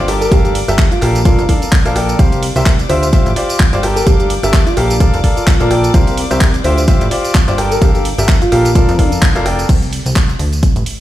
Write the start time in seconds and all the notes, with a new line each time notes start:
Already playing: G1 D5 D6
0.08 G4 A4 A#4 G5, open hi-hat
0.21 A#4, closed hi-hat, tambourine
0.31 G1 G4 A4 A#4 F5, kick, closed hi-hat, tambourine
0.45 G4, closed hi-hat, tambourine
0.55 open hi-hat
0.68 G1 G4 A4 A#4 E5, closed hi-hat, tambourine
0.78 kick, clap, closed hi-hat, tambourine
0.92 F4, closed hi-hat, tambourine
1.02 A#1 G4 A4 A#4 F5, clap, open hi-hat
1.15 closed hi-hat, tambourine
1.25 F4 A4 A#4 D5 F5, kick, closed hi-hat, tambourine
1.39 F1, closed hi-hat, tambourine
1.49 A4 A#4 D5 F5, kick, open hi-hat
1.62 closed hi-hat, tambourine
1.72 kick, clap, closed hi-hat, tambourine
1.86 A#1 A4 A#4 D5 F5, closed hi-hat, tambourine
1.96 A4 A#4 D5 G5, open hi-hat
2.09 closed hi-hat, tambourine
2.19 C2 G4 A#4 C5 D5 F5 D6, kick, closed hi-hat, tambourine
2.32 closed hi-hat, tambourine
2.43 open hi-hat
2.56 C2 G4 A#4 C5 E5, closed hi-hat, tambourine
2.66 kick, clap, closed hi-hat, tambourine
2.79 closed hi-hat, tambourine
2.89 D2 F4 G4 C5 E5, open hi-hat
3.02 C5, closed hi-hat, tambourine
3.13 F4 G4 C5 E5, kick, closed hi-hat, tambourine
3.26 A1, closed hi-hat, tambourine
3.36 F4 G4 C5 D5, open hi-hat
3.50 closed hi-hat, tambourine
3.60 kick, clap, closed hi-hat
3.73 G1 F4 G4 C5 D5, closed hi-hat, tambourine
3.83 G4 A4 A#4 G5, open hi-hat
3.96 A#4, closed hi-hat, tambourine
4.07 G1 G4 A4 A#4 F5, kick, closed hi-hat, tambourine
4.20 G4, closed hi-hat, tambourine
4.30 open hi-hat
4.43 G1 G4 A4 A#4 E5, closed hi-hat, tambourine
4.53 kick, clap, closed hi-hat, tambourine
4.67 F4, closed hi-hat, tambourine
4.77 A#1 G4 A4 A#4 F5, open hi-hat
4.90 closed hi-hat, tambourine
5.00 A4 A#4 D5 F5, kick, closed hi-hat, tambourine
5.14 F1, closed hi-hat, tambourine
5.24 A4 A#4 D5 F5, kick, open hi-hat
5.37 F4, closed hi-hat, tambourine
5.47 kick, clap, closed hi-hat, tambourine
5.60 A#1 A4 A#4 D5 F5, closed hi-hat, tambourine
5.71 A4 A#4 D5 G5, open hi-hat
5.84 closed hi-hat, tambourine
5.94 C2 G4 A#4 C5 F5, kick, closed hi-hat, tambourine
6.07 closed hi-hat, tambourine
6.17 open hi-hat
6.31 C2 G4 A#4 C5 E5, closed hi-hat, tambourine
6.41 kick, clap, closed hi-hat, tambourine
6.54 closed hi-hat, tambourine
6.64 D2 F4 G4 C5 E5, open hi-hat
6.78 C5, closed hi-hat, tambourine
6.88 F4 G4 C5 E5, kick, closed hi-hat, tambourine
7.01 A1, closed hi-hat, tambourine
7.11 F4 G4 C5 D5, open hi-hat
7.25 closed hi-hat, tambourine
7.35 kick, clap, closed hi-hat
7.48 G1 F4 G4 C5 D5, closed hi-hat, tambourine
7.58 G4 A4 A#4 G5, open hi-hat
7.71 A#4, closed hi-hat, tambourine
7.82 G1 G4 A4 A#4 F5, kick, closed hi-hat, tambourine
7.95 G4, closed hi-hat, tambourine
8.05 open hi-hat
8.18 G1 G4 A4 A#4 E5, closed hi-hat, tambourine
8.28 kick, clap, closed hi-hat, tambourine
8.42 F4, closed hi-hat, tambourine
8.52 A#1 G4 A4 A#4 F5, open hi-hat
8.65 closed hi-hat, tambourine
8.75 F4 A4 A#4 D5 F5, kick, closed hi-hat, tambourine
8.89 F2, closed hi-hat, tambourine
8.99 A4 A#4 D5 F5, kick, open hi-hat
9.12 closed hi-hat, tambourine
9.22 kick, clap, closed hi-hat, tambourine
9.35 F1 A4 A#4 D5 F5, closed hi-hat, tambourine
9.46 A4 A#4 D5 G5, open hi-hat
9.59 closed hi-hat, tambourine
9.69 C2, kick, closed hi-hat, crash, tambourine
9.82 closed hi-hat, tambourine
9.93 open hi-hat
10.06 C2, closed hi-hat, tambourine
10.16 kick, clap, closed hi-hat, tambourine
10.29 closed hi-hat, tambourine
10.39 D2, open hi-hat
10.53 closed hi-hat, tambourine
10.63 kick, closed hi-hat, tambourine
10.76 A1, closed hi-hat, tambourine
10.86 open hi-hat